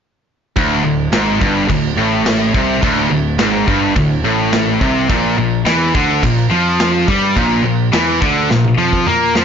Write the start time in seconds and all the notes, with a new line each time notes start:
0.56 D1 D2, kick, crash
0.84 D1 D2
1.12 G#1 G#2, snare, crash
1.41 G1 G2, kick
1.69 D1 D2, kick, crash
1.97 A1 A2
2.26 snare, crash
2.54 C2 C3, kick
2.83 D1 D2, kick, crash
3.10 D1 D2
3.39 G#1 G#2, snare, crash
3.67 G1 G2, kick
3.95 D1 D2, kick, crash
4.24 A1 A2
4.53 snare, crash
4.81 C2 C3, kick
5.09 A#1 A#2, kick, crash
5.38 A#1 A#2
5.65 E2 E3, snare, crash
5.95 D2 D3, kick
6.22 A#1 A#2, kick, crash
6.50 F2 F3
6.80 snare, crash
7.07 G2 G3, kick
7.35 A#1 A#2, kick, crash
7.64 A#1 A#2
7.92 E2 E3, snare, crash
8.21 D2 D3, kick
8.50 A#1 A#2, snare
8.65 high tom
8.78 F2 F3
8.93 kick
9.06 A#2 A#3, mid tom
9.35 F2 F3, snare